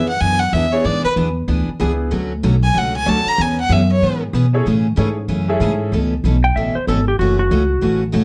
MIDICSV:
0, 0, Header, 1, 7, 480
1, 0, Start_track
1, 0, Key_signature, 3, "major"
1, 0, Tempo, 317125
1, 1287, Time_signature, 4, 2, 24, 8
1, 12474, End_track
2, 0, Start_track
2, 0, Title_t, "Fiddle"
2, 0, Program_c, 0, 110
2, 127, Note_on_c, 0, 78, 92
2, 312, Note_on_c, 0, 80, 100
2, 335, Note_off_c, 0, 78, 0
2, 597, Note_on_c, 0, 78, 92
2, 620, Note_off_c, 0, 80, 0
2, 805, Note_on_c, 0, 76, 85
2, 828, Note_off_c, 0, 78, 0
2, 1093, Note_on_c, 0, 73, 88
2, 1115, Note_off_c, 0, 76, 0
2, 1289, Note_on_c, 0, 74, 91
2, 1312, Note_off_c, 0, 73, 0
2, 1567, Note_off_c, 0, 74, 0
2, 1576, Note_on_c, 0, 71, 97
2, 1689, Note_off_c, 0, 71, 0
2, 3983, Note_on_c, 0, 80, 84
2, 4206, Note_on_c, 0, 78, 92
2, 4229, Note_off_c, 0, 80, 0
2, 4477, Note_off_c, 0, 78, 0
2, 4486, Note_on_c, 0, 80, 98
2, 4674, Note_on_c, 0, 81, 97
2, 4697, Note_off_c, 0, 80, 0
2, 4960, Note_on_c, 0, 82, 111
2, 4983, Note_off_c, 0, 81, 0
2, 5166, Note_on_c, 0, 80, 92
2, 5188, Note_off_c, 0, 82, 0
2, 5441, Note_off_c, 0, 80, 0
2, 5450, Note_on_c, 0, 78, 98
2, 5631, Note_on_c, 0, 76, 86
2, 5653, Note_off_c, 0, 78, 0
2, 5913, Note_off_c, 0, 76, 0
2, 5932, Note_on_c, 0, 73, 93
2, 6364, Note_off_c, 0, 73, 0
2, 12474, End_track
3, 0, Start_track
3, 0, Title_t, "Electric slide guitar"
3, 0, Program_c, 1, 29
3, 9749, Note_on_c, 1, 79, 97
3, 9923, Note_off_c, 1, 79, 0
3, 9927, Note_on_c, 1, 76, 83
3, 10211, Note_off_c, 1, 76, 0
3, 10222, Note_on_c, 1, 72, 73
3, 10399, Note_off_c, 1, 72, 0
3, 10419, Note_on_c, 1, 69, 82
3, 10698, Note_off_c, 1, 69, 0
3, 10718, Note_on_c, 1, 67, 86
3, 10878, Note_off_c, 1, 67, 0
3, 10884, Note_on_c, 1, 66, 84
3, 11170, Note_off_c, 1, 66, 0
3, 11190, Note_on_c, 1, 66, 95
3, 12115, Note_off_c, 1, 66, 0
3, 12474, End_track
4, 0, Start_track
4, 0, Title_t, "Upright piano"
4, 0, Program_c, 2, 0
4, 1098, Note_on_c, 2, 59, 68
4, 1099, Note_on_c, 2, 62, 66
4, 1103, Note_on_c, 2, 64, 65
4, 1103, Note_on_c, 2, 68, 66
4, 1118, Note_on_c, 2, 74, 77
4, 1266, Note_off_c, 2, 59, 0
4, 1267, Note_off_c, 2, 62, 0
4, 1268, Note_off_c, 2, 64, 0
4, 1268, Note_off_c, 2, 68, 0
4, 1276, Note_off_c, 2, 74, 0
4, 2719, Note_on_c, 2, 59, 69
4, 2728, Note_on_c, 2, 62, 62
4, 2730, Note_on_c, 2, 64, 64
4, 2736, Note_on_c, 2, 68, 64
4, 2737, Note_on_c, 2, 71, 75
4, 3203, Note_off_c, 2, 59, 0
4, 3207, Note_off_c, 2, 62, 0
4, 3208, Note_off_c, 2, 64, 0
4, 3211, Note_off_c, 2, 68, 0
4, 3212, Note_off_c, 2, 71, 0
4, 4625, Note_on_c, 2, 62, 64
4, 4626, Note_on_c, 2, 61, 68
4, 4630, Note_on_c, 2, 66, 63
4, 4633, Note_on_c, 2, 69, 64
4, 4636, Note_on_c, 2, 73, 75
4, 5116, Note_off_c, 2, 61, 0
4, 5116, Note_off_c, 2, 62, 0
4, 5118, Note_off_c, 2, 66, 0
4, 5120, Note_off_c, 2, 69, 0
4, 5121, Note_off_c, 2, 73, 0
4, 6860, Note_on_c, 2, 61, 83
4, 6864, Note_on_c, 2, 64, 70
4, 6872, Note_on_c, 2, 69, 76
4, 6873, Note_on_c, 2, 68, 79
4, 6879, Note_on_c, 2, 73, 91
4, 7027, Note_off_c, 2, 61, 0
4, 7028, Note_off_c, 2, 64, 0
4, 7032, Note_off_c, 2, 69, 0
4, 7033, Note_off_c, 2, 68, 0
4, 7036, Note_off_c, 2, 73, 0
4, 7527, Note_on_c, 2, 61, 62
4, 7535, Note_on_c, 2, 68, 61
4, 7537, Note_on_c, 2, 64, 61
4, 7538, Note_on_c, 2, 69, 61
4, 7547, Note_on_c, 2, 73, 74
4, 7791, Note_off_c, 2, 61, 0
4, 7795, Note_off_c, 2, 68, 0
4, 7796, Note_off_c, 2, 64, 0
4, 7797, Note_off_c, 2, 69, 0
4, 7801, Note_off_c, 2, 73, 0
4, 8300, Note_on_c, 2, 61, 92
4, 8301, Note_on_c, 2, 64, 79
4, 8310, Note_on_c, 2, 68, 81
4, 8314, Note_on_c, 2, 69, 80
4, 8319, Note_on_c, 2, 76, 92
4, 8927, Note_off_c, 2, 61, 0
4, 8928, Note_off_c, 2, 64, 0
4, 8932, Note_off_c, 2, 68, 0
4, 8934, Note_off_c, 2, 69, 0
4, 8937, Note_off_c, 2, 76, 0
4, 12474, End_track
5, 0, Start_track
5, 0, Title_t, "Steel-string acoustic guitar"
5, 0, Program_c, 3, 25
5, 321, Note_on_c, 3, 52, 57
5, 332, Note_on_c, 3, 59, 58
5, 336, Note_on_c, 3, 62, 60
5, 345, Note_on_c, 3, 68, 64
5, 631, Note_off_c, 3, 52, 0
5, 636, Note_off_c, 3, 59, 0
5, 638, Note_off_c, 3, 62, 0
5, 643, Note_off_c, 3, 68, 0
5, 829, Note_on_c, 3, 52, 69
5, 831, Note_on_c, 3, 59, 83
5, 831, Note_on_c, 3, 62, 84
5, 841, Note_on_c, 3, 68, 87
5, 984, Note_off_c, 3, 52, 0
5, 985, Note_off_c, 3, 59, 0
5, 985, Note_off_c, 3, 62, 0
5, 990, Note_off_c, 3, 68, 0
5, 1272, Note_on_c, 3, 52, 63
5, 1279, Note_on_c, 3, 59, 66
5, 1279, Note_on_c, 3, 62, 64
5, 1282, Note_on_c, 3, 68, 69
5, 1586, Note_off_c, 3, 52, 0
5, 1590, Note_off_c, 3, 59, 0
5, 1590, Note_off_c, 3, 62, 0
5, 1591, Note_off_c, 3, 68, 0
5, 1764, Note_on_c, 3, 52, 77
5, 1771, Note_on_c, 3, 59, 77
5, 1771, Note_on_c, 3, 62, 83
5, 1772, Note_on_c, 3, 68, 87
5, 1932, Note_off_c, 3, 52, 0
5, 1935, Note_off_c, 3, 59, 0
5, 1935, Note_off_c, 3, 62, 0
5, 1936, Note_off_c, 3, 68, 0
5, 2242, Note_on_c, 3, 52, 63
5, 2242, Note_on_c, 3, 59, 65
5, 2250, Note_on_c, 3, 62, 66
5, 2252, Note_on_c, 3, 68, 66
5, 2551, Note_off_c, 3, 52, 0
5, 2551, Note_off_c, 3, 59, 0
5, 2555, Note_off_c, 3, 62, 0
5, 2557, Note_off_c, 3, 68, 0
5, 2718, Note_on_c, 3, 52, 77
5, 2722, Note_on_c, 3, 59, 78
5, 2732, Note_on_c, 3, 62, 76
5, 2732, Note_on_c, 3, 68, 94
5, 2889, Note_off_c, 3, 52, 0
5, 2891, Note_off_c, 3, 59, 0
5, 2896, Note_off_c, 3, 62, 0
5, 2896, Note_off_c, 3, 68, 0
5, 3191, Note_on_c, 3, 50, 62
5, 3197, Note_on_c, 3, 54, 72
5, 3197, Note_on_c, 3, 57, 64
5, 3197, Note_on_c, 3, 61, 70
5, 3203, Note_on_c, 3, 66, 70
5, 3506, Note_off_c, 3, 50, 0
5, 3509, Note_off_c, 3, 54, 0
5, 3509, Note_off_c, 3, 57, 0
5, 3509, Note_off_c, 3, 61, 0
5, 3512, Note_off_c, 3, 66, 0
5, 3681, Note_on_c, 3, 50, 77
5, 3684, Note_on_c, 3, 54, 88
5, 3688, Note_on_c, 3, 57, 76
5, 3689, Note_on_c, 3, 61, 80
5, 3695, Note_on_c, 3, 66, 86
5, 3850, Note_off_c, 3, 50, 0
5, 3852, Note_off_c, 3, 54, 0
5, 3854, Note_off_c, 3, 57, 0
5, 3854, Note_off_c, 3, 61, 0
5, 3857, Note_off_c, 3, 66, 0
5, 4141, Note_on_c, 3, 54, 57
5, 4145, Note_on_c, 3, 50, 57
5, 4150, Note_on_c, 3, 57, 62
5, 4150, Note_on_c, 3, 61, 67
5, 4156, Note_on_c, 3, 66, 68
5, 4461, Note_off_c, 3, 54, 0
5, 4463, Note_off_c, 3, 50, 0
5, 4465, Note_off_c, 3, 57, 0
5, 4466, Note_off_c, 3, 61, 0
5, 4468, Note_off_c, 3, 66, 0
5, 4623, Note_on_c, 3, 50, 80
5, 4628, Note_on_c, 3, 54, 75
5, 4629, Note_on_c, 3, 61, 92
5, 4635, Note_on_c, 3, 57, 83
5, 4635, Note_on_c, 3, 66, 90
5, 4801, Note_off_c, 3, 50, 0
5, 4804, Note_off_c, 3, 54, 0
5, 4804, Note_off_c, 3, 61, 0
5, 4807, Note_off_c, 3, 57, 0
5, 4807, Note_off_c, 3, 66, 0
5, 5108, Note_on_c, 3, 52, 68
5, 5110, Note_on_c, 3, 59, 64
5, 5113, Note_on_c, 3, 61, 69
5, 5113, Note_on_c, 3, 68, 66
5, 5424, Note_off_c, 3, 52, 0
5, 5425, Note_off_c, 3, 59, 0
5, 5427, Note_off_c, 3, 61, 0
5, 5427, Note_off_c, 3, 68, 0
5, 5589, Note_on_c, 3, 52, 74
5, 5591, Note_on_c, 3, 59, 85
5, 5606, Note_on_c, 3, 61, 88
5, 5606, Note_on_c, 3, 68, 87
5, 5764, Note_off_c, 3, 52, 0
5, 5765, Note_off_c, 3, 59, 0
5, 5772, Note_off_c, 3, 68, 0
5, 5773, Note_off_c, 3, 61, 0
5, 6090, Note_on_c, 3, 52, 60
5, 6094, Note_on_c, 3, 68, 68
5, 6099, Note_on_c, 3, 59, 65
5, 6100, Note_on_c, 3, 61, 67
5, 6395, Note_off_c, 3, 52, 0
5, 6397, Note_off_c, 3, 68, 0
5, 6399, Note_off_c, 3, 59, 0
5, 6400, Note_off_c, 3, 61, 0
5, 6576, Note_on_c, 3, 59, 85
5, 6579, Note_on_c, 3, 52, 72
5, 6589, Note_on_c, 3, 61, 91
5, 6591, Note_on_c, 3, 68, 88
5, 6737, Note_off_c, 3, 59, 0
5, 6739, Note_off_c, 3, 52, 0
5, 6744, Note_off_c, 3, 61, 0
5, 6744, Note_off_c, 3, 68, 0
5, 7062, Note_on_c, 3, 49, 65
5, 7065, Note_on_c, 3, 52, 68
5, 7067, Note_on_c, 3, 61, 73
5, 7077, Note_on_c, 3, 57, 62
5, 7083, Note_on_c, 3, 68, 73
5, 7361, Note_off_c, 3, 49, 0
5, 7362, Note_off_c, 3, 52, 0
5, 7363, Note_off_c, 3, 61, 0
5, 7368, Note_off_c, 3, 57, 0
5, 7371, Note_off_c, 3, 68, 0
5, 7510, Note_on_c, 3, 49, 74
5, 7522, Note_on_c, 3, 52, 85
5, 7524, Note_on_c, 3, 57, 80
5, 7525, Note_on_c, 3, 61, 93
5, 7526, Note_on_c, 3, 68, 86
5, 7683, Note_off_c, 3, 49, 0
5, 7690, Note_off_c, 3, 52, 0
5, 7691, Note_off_c, 3, 57, 0
5, 7691, Note_off_c, 3, 61, 0
5, 7692, Note_off_c, 3, 68, 0
5, 7999, Note_on_c, 3, 49, 61
5, 8001, Note_on_c, 3, 52, 68
5, 8009, Note_on_c, 3, 57, 59
5, 8010, Note_on_c, 3, 61, 66
5, 8018, Note_on_c, 3, 68, 68
5, 8309, Note_off_c, 3, 49, 0
5, 8310, Note_off_c, 3, 52, 0
5, 8313, Note_off_c, 3, 57, 0
5, 8314, Note_off_c, 3, 61, 0
5, 8318, Note_off_c, 3, 68, 0
5, 8490, Note_on_c, 3, 49, 83
5, 8494, Note_on_c, 3, 52, 82
5, 8502, Note_on_c, 3, 57, 79
5, 8503, Note_on_c, 3, 61, 88
5, 8504, Note_on_c, 3, 68, 87
5, 8653, Note_off_c, 3, 49, 0
5, 8655, Note_off_c, 3, 52, 0
5, 8659, Note_off_c, 3, 57, 0
5, 8660, Note_off_c, 3, 61, 0
5, 8661, Note_off_c, 3, 68, 0
5, 8977, Note_on_c, 3, 47, 60
5, 8982, Note_on_c, 3, 61, 69
5, 8983, Note_on_c, 3, 52, 69
5, 8987, Note_on_c, 3, 57, 66
5, 8991, Note_on_c, 3, 69, 73
5, 9277, Note_off_c, 3, 47, 0
5, 9280, Note_off_c, 3, 52, 0
5, 9280, Note_off_c, 3, 61, 0
5, 9282, Note_off_c, 3, 57, 0
5, 9284, Note_off_c, 3, 69, 0
5, 9458, Note_on_c, 3, 52, 79
5, 9463, Note_on_c, 3, 47, 76
5, 9470, Note_on_c, 3, 69, 86
5, 9471, Note_on_c, 3, 57, 75
5, 9471, Note_on_c, 3, 61, 78
5, 9617, Note_off_c, 3, 52, 0
5, 9619, Note_off_c, 3, 47, 0
5, 9623, Note_off_c, 3, 57, 0
5, 9623, Note_off_c, 3, 61, 0
5, 9623, Note_off_c, 3, 69, 0
5, 9943, Note_on_c, 3, 47, 54
5, 9948, Note_on_c, 3, 57, 55
5, 9948, Note_on_c, 3, 61, 59
5, 9950, Note_on_c, 3, 52, 55
5, 9951, Note_on_c, 3, 69, 64
5, 10240, Note_off_c, 3, 47, 0
5, 10243, Note_off_c, 3, 57, 0
5, 10243, Note_off_c, 3, 61, 0
5, 10244, Note_off_c, 3, 52, 0
5, 10244, Note_off_c, 3, 69, 0
5, 10417, Note_on_c, 3, 57, 83
5, 10418, Note_on_c, 3, 47, 80
5, 10425, Note_on_c, 3, 52, 86
5, 10429, Note_on_c, 3, 61, 83
5, 10431, Note_on_c, 3, 69, 88
5, 10577, Note_off_c, 3, 47, 0
5, 10577, Note_off_c, 3, 57, 0
5, 10581, Note_off_c, 3, 52, 0
5, 10582, Note_off_c, 3, 61, 0
5, 10584, Note_off_c, 3, 69, 0
5, 10909, Note_on_c, 3, 52, 62
5, 10911, Note_on_c, 3, 49, 60
5, 10911, Note_on_c, 3, 61, 68
5, 10916, Note_on_c, 3, 57, 63
5, 10920, Note_on_c, 3, 66, 70
5, 11203, Note_off_c, 3, 52, 0
5, 11204, Note_off_c, 3, 49, 0
5, 11204, Note_off_c, 3, 61, 0
5, 11207, Note_off_c, 3, 57, 0
5, 11209, Note_off_c, 3, 66, 0
5, 11368, Note_on_c, 3, 49, 76
5, 11371, Note_on_c, 3, 52, 71
5, 11374, Note_on_c, 3, 57, 83
5, 11377, Note_on_c, 3, 61, 85
5, 11384, Note_on_c, 3, 66, 80
5, 11532, Note_off_c, 3, 49, 0
5, 11533, Note_off_c, 3, 52, 0
5, 11535, Note_off_c, 3, 57, 0
5, 11536, Note_off_c, 3, 61, 0
5, 11540, Note_off_c, 3, 66, 0
5, 11827, Note_on_c, 3, 49, 63
5, 11832, Note_on_c, 3, 52, 62
5, 11840, Note_on_c, 3, 57, 60
5, 11840, Note_on_c, 3, 61, 63
5, 11849, Note_on_c, 3, 66, 64
5, 12142, Note_off_c, 3, 49, 0
5, 12144, Note_off_c, 3, 52, 0
5, 12148, Note_off_c, 3, 57, 0
5, 12148, Note_off_c, 3, 61, 0
5, 12153, Note_off_c, 3, 66, 0
5, 12295, Note_on_c, 3, 49, 77
5, 12305, Note_on_c, 3, 52, 77
5, 12309, Note_on_c, 3, 61, 78
5, 12311, Note_on_c, 3, 57, 82
5, 12313, Note_on_c, 3, 66, 80
5, 12474, Note_off_c, 3, 49, 0
5, 12474, Note_off_c, 3, 52, 0
5, 12474, Note_off_c, 3, 57, 0
5, 12474, Note_off_c, 3, 61, 0
5, 12474, Note_off_c, 3, 66, 0
5, 12474, End_track
6, 0, Start_track
6, 0, Title_t, "Upright bass"
6, 0, Program_c, 4, 32
6, 0, Note_on_c, 4, 41, 91
6, 307, Note_off_c, 4, 41, 0
6, 315, Note_on_c, 4, 42, 88
6, 786, Note_off_c, 4, 42, 0
6, 798, Note_on_c, 4, 40, 97
6, 1268, Note_off_c, 4, 40, 0
6, 1281, Note_on_c, 4, 44, 87
6, 1558, Note_off_c, 4, 44, 0
6, 1759, Note_on_c, 4, 40, 94
6, 2228, Note_off_c, 4, 40, 0
6, 2237, Note_on_c, 4, 38, 89
6, 2516, Note_off_c, 4, 38, 0
6, 2720, Note_on_c, 4, 37, 94
6, 3189, Note_off_c, 4, 37, 0
6, 3203, Note_on_c, 4, 38, 89
6, 3670, Note_off_c, 4, 38, 0
6, 3688, Note_on_c, 4, 35, 99
6, 4153, Note_off_c, 4, 35, 0
6, 4167, Note_on_c, 4, 37, 85
6, 4632, Note_off_c, 4, 37, 0
6, 4643, Note_on_c, 4, 38, 90
6, 4919, Note_off_c, 4, 38, 0
6, 5121, Note_on_c, 4, 40, 96
6, 5582, Note_off_c, 4, 40, 0
6, 5591, Note_on_c, 4, 42, 101
6, 6063, Note_off_c, 4, 42, 0
6, 6082, Note_on_c, 4, 44, 86
6, 6549, Note_off_c, 4, 44, 0
6, 6559, Note_on_c, 4, 47, 99
6, 7027, Note_off_c, 4, 47, 0
6, 7051, Note_on_c, 4, 45, 91
6, 7513, Note_off_c, 4, 45, 0
6, 7524, Note_on_c, 4, 44, 94
6, 7986, Note_off_c, 4, 44, 0
6, 7995, Note_on_c, 4, 42, 87
6, 8465, Note_off_c, 4, 42, 0
6, 8477, Note_on_c, 4, 44, 99
6, 8946, Note_off_c, 4, 44, 0
6, 8959, Note_on_c, 4, 37, 85
6, 9427, Note_off_c, 4, 37, 0
6, 9442, Note_on_c, 4, 35, 91
6, 9908, Note_off_c, 4, 35, 0
6, 9929, Note_on_c, 4, 33, 81
6, 10201, Note_off_c, 4, 33, 0
6, 10403, Note_on_c, 4, 32, 95
6, 10869, Note_off_c, 4, 32, 0
6, 10883, Note_on_c, 4, 30, 92
6, 11349, Note_off_c, 4, 30, 0
6, 11366, Note_on_c, 4, 37, 93
6, 11830, Note_off_c, 4, 37, 0
6, 11841, Note_on_c, 4, 33, 83
6, 12308, Note_off_c, 4, 33, 0
6, 12319, Note_on_c, 4, 45, 96
6, 12474, Note_off_c, 4, 45, 0
6, 12474, End_track
7, 0, Start_track
7, 0, Title_t, "Muted upright bass strokes"
7, 1579, Note_on_c, 9, 29, 42
7, 1730, Note_off_c, 9, 29, 0
7, 2536, Note_on_c, 9, 29, 43
7, 2688, Note_off_c, 9, 29, 0
7, 4930, Note_on_c, 9, 29, 40
7, 5081, Note_off_c, 9, 29, 0
7, 10221, Note_on_c, 9, 29, 42
7, 10373, Note_off_c, 9, 29, 0
7, 12474, End_track
0, 0, End_of_file